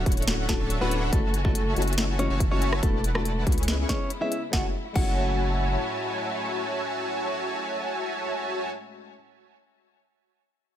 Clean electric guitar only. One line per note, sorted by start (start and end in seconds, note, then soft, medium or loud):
0.49 0.70 A3 medium
0.49 0.70 A4 medium
0.81 1.02 B3 medium
0.81 1.02 B4 medium
1.13 1.34 A3 medium
1.13 1.34 A4 medium
1.45 1.73 A3 medium
1.45 1.73 A4 medium
2.19 2.40 C#4 medium
2.19 2.40 C#5 medium
2.51 2.72 C#4 medium
2.51 2.72 C#5 medium
2.83 3.04 A3 medium
2.83 3.04 A4 loud
3.15 3.43 A3 medium
3.15 3.43 A4 medium
3.89 4.10 C#4 medium
3.89 4.10 C#5 medium
4.21 4.42 E4 medium
4.21 4.42 E5 medium
4.53 4.65 F#5 loud
4.96 9.11 F#5 medium